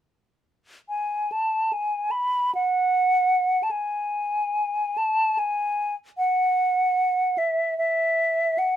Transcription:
0.89 G#5
1.32 A5
1.73 G#5
2.11 B5
2.55 F#5
3.63 A5
3.71 G#5
4.98 A5
5.39 G#5
6.18 F#5
7.38 E5
7.78 E5
8.58 F#5

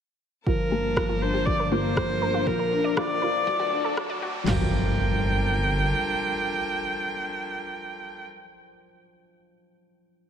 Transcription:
0.47 G1 F3 G3 D4 F4 A#4 A5, kick, riser
0.72 A#3 G4
0.97 F3 A#4, kick, cross-stick
1.09 F4
1.22 D4 C5
1.34 G4
1.46 F3 D5, kick
1.60 A#4
1.65 D5
1.71 A#3 F4 C5
1.97 F3 G4, kick, cross-stick
2.22 D4 A#4
2.34 F4
2.47 A#1 F3 A#4, kick
2.59 A#4
2.73 D4
2.84 D5
2.97 F3 F4 D5, kick, cross-stick
3.22 F4 A#4
3.47 D2 F#3 F#4 A4 D5, kick
3.60 F#4
3.73 D4
3.84 A4
3.97 F#3, kick, cross-stick
4.10 D5
4.22 F#4
4.47 G1 F3 G3 D4 F4 A4 A#4 G5, snare, floor tom, crash, impact

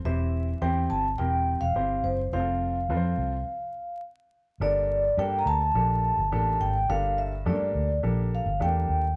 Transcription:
0.05 E1 E3 C4 E4 G4 C5 E5
0.62 E2 C4 E4 G4 C5 G5
0.90 G1 A5
1.18 E1 C4 E4 G4 A#4 G5
1.61 E1 F5
1.76 G1 C4 E4 G4 C5
2.03 F#1 C5
2.32 F1 C4 F4 G#4 C5 F5
2.40 A4
2.89 F2 C4 F4 A4 B4
2.97 C5
3.18 C2
4.60 G1 G2 A#3 D4 G4 A4 D5
5.17 G2 A#3 D4 G4 A4 G5
5.39 A#5
5.46 D2 A5
5.74 A#1 A#3 D4 G4 A4
6.17 G1
6.32 A1 A#3 D4 G4 A4
6.61 G#1 G5
6.89 G1 G2 A#3 D4 G4 A4 F5
7.18 E5
7.45 G2 A3 D4 G4 A4 D5
7.52 A#3
7.75 D2
8.03 A#1 A#3 D4 G4 A4
8.35 F5
8.46 G1
8.60 E2 A3 D4 G4 A4 G5
8.67 A#3
8.89 D#2

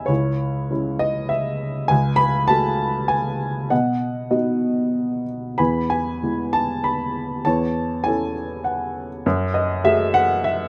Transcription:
Already playing: E2 G#3 C#4 E4 D#5 E5 G#5
0.06 C#2 E4 C#5
0.71 G#3 C#4 E4
0.99 D#5
1.29 E5
1.88 C#2 G#5
2.16 B5
2.48 G#3 A3 F#4 A5
3.08 G#5
3.70 B2 D#5 F#5
4.30 B3 D#4 F#4 D#5
5.58 E2 G#5 B5
5.90 G#5
6.23 G#3 B3 E4
6.53 A5
6.84 B5
7.45 E2 C#5 A5
8.04 C#4 E4 A4 G#5
8.64 F#5
9.26 F#2
9.54 D#5
9.84 A3 F#4 G#4 E5
10.14 F#5
10.44 E5

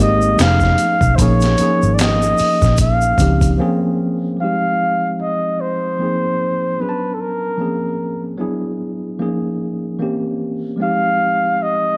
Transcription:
Already playing: G#1 G#3
0.00 A#3 C4 D#4 G4 D#5
0.22 shaker
0.37 F1 F3 A3 C#4 D#4 G#4, finger snap, snare, closed hi-hat, shaker
0.42 F5
0.60 kick, snare, shaker
0.78 closed hi-hat, shaker
1.01 B1, kick, shaker
1.16 A#1 F3 A#3 C5, kick, closed hi-hat, shaker
1.20 C#4 D#4 G#4 C#5
1.41 snare, closed hi-hat, shaker
1.58 F3 A#3 C#4 D#4 G#4, closed hi-hat, shaker
1.83 G#1, shaker
1.95 D5
1.99 D#5, finger snap, snare, closed hi-hat, shaker
2.22 shaker
2.38 muted fingered electric bass stroke, open hi-hat, shaker
2.62 A#1, kick, snare, shaker
2.77 F5, kick, closed hi-hat, shaker
3.01 shaker
3.18 C#2 F3 C4 C#4 D#4 G4, kick, closed hi-hat, shaker
3.41 kick, closed hi-hat, shaker
3.58 F3 A#3 C4 C#4 G#4
4.37 F3 G3 C4
4.41 G#3 D#4 G4 F5
5.21 D#5
5.61 C5
5.99 F3 A#3 C4 D#4 G#4
6.79 F#3 B3 C#4 D4 G#4 B4
6.89 A5
7.14 A4
7.21 A#4
7.58 F3 A#3 C4 C#4 G#4
8.37 F#3 B3 D4 E4 G#4
9.19 F3 A#3 C#4 D#4 G#4
9.99 E3 A#3 C4 C#4 G4
10.76 F3 G#3 C4
10.81 D#4 G4 F5
11.62 D#5

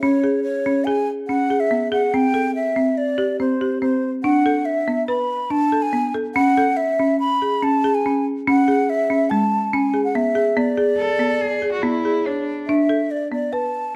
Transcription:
0.01 C#4 C#5
0.24 G#4
0.43 C#5
0.66 C#4
0.85 G#4 G#5
1.28 C#4 F#5
1.50 G#4
1.60 E5
1.71 B3
1.92 G#4 F#5
2.14 C4 G5
2.34 A4
2.55 E5
2.76 C4
2.97 D5
3.18 G4
3.40 C4 C5
3.61 G4
3.81 C4 C5
4.24 D4 F#5
4.46 A4
4.65 E5
4.88 B3
5.07 B4 B5
5.50 D4 A5
5.72 A4
5.82 G#5
5.93 B3
6.14 A4
6.35 C#4 F#5
6.57 A4
6.77 E5
6.99 C#4
7.20 B5
7.42 G#4
7.63 C#4 A5
7.84 G#4
7.94 G#5
8.06 C#4
8.47 C#4 F#5
8.68 G#4
8.90 E5
9.10 C#4
9.30 G#3 A5
9.73 C#4 G#5
9.94 G#4
10.04 F#5
10.15 B3 E5
10.35 G#4
10.57 B3 D5
10.77 G#4
10.97 A4
11.19 B3
11.41 G#4
11.62 G#4
11.72 F#4
11.82 B3 E4
12.05 G#4
12.26 D4 C#5
12.67 D4 E5
12.89 A4
13.11 D5
13.32 B3 D5
13.53 B4 A5

